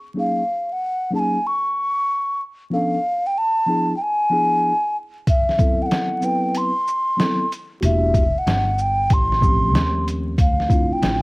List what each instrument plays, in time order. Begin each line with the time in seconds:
0.14 tine electric piano F#3 A#3 C#4 D#4 G#4
0.20 ocarina F5
0.72 ocarina F#5
1.11 tine electric piano F#3 A#3 C#4 D#4 G#4
1.15 ocarina G#5 A5
1.47 ocarina C#6
2.70 tine electric piano F3 B3 C#4 D4 A4, ocarina F5
3.27 ocarina G5
3.38 ocarina A5
3.66 tine electric piano F3 B3 D4 E4 G#4
3.97 ocarina G5
4.02 ocarina G#5
4.29 tine electric piano F3 B3 D4 E4 G#4
5.27 ocarina E5, kick, closed hi-hat
5.49 snare
5.57 tine electric piano F#3 B3 C4 E4 A4, kick, closed hi-hat, shaker
5.83 ocarina F#5 G5
5.91 snare, closed hi-hat
6.21 tine electric piano F#3 B3 C4 E4 B4, shaker
6.25 ocarina G5
6.55 ocarina C6, closed hi-hat
6.88 shaker
7.17 tine electric piano F#3 B3 C4 E4 A4, snare, closed hi-hat
7.52 closed hi-hat, shaker
7.81 upright bass E1, tine electric piano A#3 D4 E4 F#4 G4, closed hi-hat
7.85 ocarina E5
8.14 kick, closed hi-hat, shaker
8.35 ocarina F#5, muted upright bass stroke
8.47 upright bass G1, snare, closed hi-hat
8.78 ocarina G5, shaker
9.10 upright bass A1, ocarina C6, kick, closed hi-hat
9.32 snare
9.41 tine electric piano F3 A3 C4 C#4 G4, kick, shaker
9.74 upright bass D#2, snare, closed hi-hat
10.08 closed hi-hat, shaker
10.38 upright bass D2, ocarina F5, kick, closed hi-hat
10.60 snare
10.68 tine electric piano A3 C4 D4 E4 F4, kick, closed hi-hat, shaker
10.91 ocarina G5, muted upright bass stroke
11.02 upright bass A1, snare, closed hi-hat